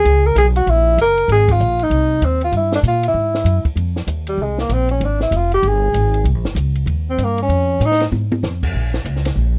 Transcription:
Already playing: G#4
0.05 C#2, ride
0.26 A#4
0.35 B1 G#4, hi-hat pedal, ride
0.56 F#4, ride
0.66 A#1 E4, ride
0.98 F#1 A#4, hi-hat pedal, ride
1.18 ride
1.28 G#1 G#4, ride
1.48 F4, kick, ride
1.60 A#1, hi-hat pedal
1.79 D#4, ride
1.90 C2, ride
2.21 D#2 C4, hi-hat pedal, ride
2.41 F4, ride
2.52 G2, ride
2.56 E4
2.72 D4, snare
2.83 A#2, hi-hat pedal, ride
2.88 F4
3.03 ride
3.08 E4
3.14 G#2
3.35 snare
3.44 F#2, hi-hat pedal, ride
3.65 muted upright bass stroke, kick, ride
3.76 F2, ride
3.96 snare
4.07 D#2, hi-hat pedal, ride
4.27 G3, ride
4.38 C2
4.42 G#3
4.58 A#3, snare
4.69 A#1, hi-hat pedal, ride
4.73 C4
4.89 C#4, ride
5.00 G#1, ride
5.05 D4
5.20 E4, snare
5.31 F1, hi-hat pedal, ride
5.36 F4
5.52 G4, ride
5.63 G1, ride
5.67 G#4
5.93 G#1, hi-hat pedal, ride
6.14 ride
6.24 C2, ride
6.34 A#1
6.45 G1, snare
6.55 C#2, hi-hat pedal, ride
6.75 ride
6.86 D#2, ride
7.10 C4
7.18 G2, hi-hat pedal, ride
7.24 A#3
7.38 ride
7.42 C#4
7.49 F2, ride
7.80 A2, hi-hat pedal, ride
7.86 D#4
7.92 snare
8.00 snare, ride
8.12 G#2, high tom
8.32 high tom
8.43 F2, snare, hi-hat pedal
8.63 kick, crash
8.74 A#1
8.94 snare
9.05 C#2, hi-hat pedal, ride
9.16 snare
9.25 snare, ride
9.36 A#1

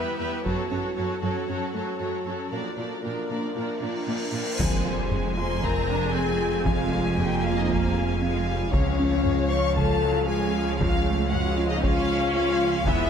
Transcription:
Already playing: G3 B3 E4 G4 B4 E5
0.18 E2 B3 G4 B4 E5
0.43 F#2 F#3 C#4 F#4 A4 C#5, taiko
0.69 F#2 F#3 C#4 F#4 A4 C#5
0.96 F#2 F#3 F#4 A4 C#5
1.22 F#2 F#3 F#4 A4 C#5
1.48 F#2 F#3 C#4 F#4 A4 C#5
1.74 F#2 F#3 A3 F#4 A4 C#5
1.99 F#2 F#3 F#4 A4 C#5
2.26 F#2 F#3 C#4 F#4 A4 C#5
2.51 A#2 F3 A#3 D4 F4 A#4 D5, cymbal swell
2.77 A#2 F3 D4 F4 A#4 D5
3.03 A#2 F3 D4 A#4 D5
3.29 A#2 F3 A#3 D4 A#4 D5
3.56 A#2 F3 D4 F4 A#4 D5
3.81 A#2 F3 D4 A#4 D5
4.07 A#2 F3 A#3 D4 A#4 D5
4.33 A#2 F3 D4 F4 A#4 D5
4.58 F1 F2 F3 G#3 C4 F4 G#4 C5 G#5, taiko, impact
4.85 G3 F4
5.11 G#3, taiko low-mid
5.37 A#3 F4 C5 C6
5.62 F3 C4 A#4 A#5, taiko
5.89 D4
6.14 C4 G#4 G#5
6.65 F3 G#3 F4 F5, taiko
6.92 F4
7.17 A#3 G4 G5, taiko low-mid
7.44 F4 F5
7.57 D#4 D#5
7.69 F3 F4 F5, taiko
8.22 G#3 C4 F4 F5
8.48 G3
8.72 C#2 C#3 F3 G#3 C#4 F4 C#5 F5, taiko
8.99 A3 C#4
9.25 G#3, taiko low-mid
9.50 F3 C#4 C#5 C#6
9.76 C#3 F3 A4 A5, taiko
10.03 F#3
10.26 G#3 G#4 G#5
10.54 F3
10.79 C#3 G#3 F4 F5, taiko
11.06 A3 C#4
11.31 G#3 F#4 F#5, taiko low-mid
11.56 C#4 F4 F5
11.70 D#4 D#5
11.83 C#3 C#4 F4 F5, taiko
12.34 G#3 F4 F5
12.86 E1 E2 E3 G#3 B3 E4 G#4 B4 E5 G#5, taiko

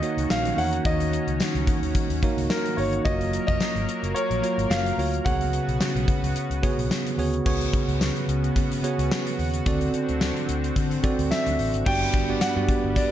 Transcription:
Already playing: D#3 A#3 C#4 D#4 F#4 C#5 D#5
0.02 A#3 D#4 F#4 C#5, closed hi-hat
0.17 C#2, closed hi-hat
0.30 A#1 F5, snare, tambourine
0.45 closed hi-hat
0.57 E2 A#3 D#4 F#4 C#5 F#5, open hi-hat
0.73 closed hi-hat
0.85 D#2 D#3 A#3 D#4 F#4 C#5 D#5, kick, closed hi-hat
1.00 closed hi-hat
1.13 closed hi-hat
1.27 C#2, closed hi-hat
1.40 snare, tambourine
1.55 C#2, closed hi-hat
1.67 kick, closed hi-hat
1.82 D#2, closed hi-hat
1.95 kick, closed hi-hat
2.10 D#2, closed hi-hat
2.23 A#3 D#4 F#4 C#5, kick, closed hi-hat
2.37 C#2, closed hi-hat
2.50 A#4, snare, tambourine
2.66 closed hi-hat
2.77 G1 A#3 D#4 F#4 C#5, open hi-hat
2.93 closed hi-hat
3.05 F#1 F#3 A#3 F4 F#4 A#4 C#5 D#5, kick, closed hi-hat
3.21 closed hi-hat
3.33 closed hi-hat
3.47 F1 D#5, kick, closed hi-hat
3.60 snare, tambourine
3.75 G#1, closed hi-hat
3.89 closed hi-hat
4.03 F#1, closed hi-hat
4.15 C#5, closed hi-hat
4.30 A#1, closed hi-hat
4.42 A#3 F4 F#4 C#5, closed hi-hat
4.58 G#1, closed hi-hat
4.70 F#1 F5, snare, tambourine
4.86 closed hi-hat
4.98 D2 A#3 F4 F#4 C#5, open hi-hat
5.14 closed hi-hat
5.25 C#2 C#3 B3 F#4 G#4 C#5 F#5, kick, closed hi-hat
5.41 closed hi-hat
5.53 closed hi-hat
5.68 B1, closed hi-hat
5.80 snare, tambourine
5.95 B1, closed hi-hat
6.08 kick, closed hi-hat
6.23 C#2, closed hi-hat
6.36 closed hi-hat
6.50 C#2, closed hi-hat
6.62 B3 F#4 G#4 C#5, kick, closed hi-hat
6.78 B1, closed hi-hat
6.91 snare, tambourine
7.06 closed hi-hat
7.18 D2 B3 F#4 G#4 C#5, open hi-hat
7.34 closed hi-hat
7.45 C#2 C#3 B3 F#4 G#4 C#5, kick, crash
7.61 closed hi-hat
7.73 kick, closed hi-hat
7.88 C#2, closed hi-hat
8.01 snare, tambourine
8.16 closed hi-hat
8.28 C#2, closed hi-hat
8.44 closed hi-hat
8.56 C#3, kick, closed hi-hat
8.72 closed hi-hat
8.83 B3 F#4 G#4 C#5, closed hi-hat
8.98 C#2, closed hi-hat
9.12 snare, tambourine
9.27 closed hi-hat
9.39 D#2, open hi-hat
9.54 closed hi-hat
9.66 D2 D3 C4 F#4 A4 D5, kick, closed hi-hat
9.81 closed hi-hat
9.94 closed hi-hat
10.09 D2, closed hi-hat
10.21 snare, tambourine
10.36 closed hi-hat
10.49 D2, closed hi-hat
10.64 closed hi-hat
10.76 D3, kick, closed hi-hat
10.91 closed hi-hat
11.03 C4 F#4 A4 D5, kick, closed hi-hat
11.19 D2, closed hi-hat
11.31 E5, snare, tambourine
11.47 D2, closed hi-hat
11.59 A1, open hi-hat
11.74 G#1, closed hi-hat
11.85 G2 G3 B3 D4 F#4 G4 B4 D5 G5, kick, crash
12.13 G1 D4 G4, kick, closed hi-hat
12.29 B3 D4 F#4 G4 D5
12.41 F#5, snare, closed hi-hat, tambourine
12.56 G2 B3 D4 F#4 G4 D5
12.69 kick, closed hi-hat
12.84 G1
12.95 G3 D4 G4 D5, kick, closed hi-hat

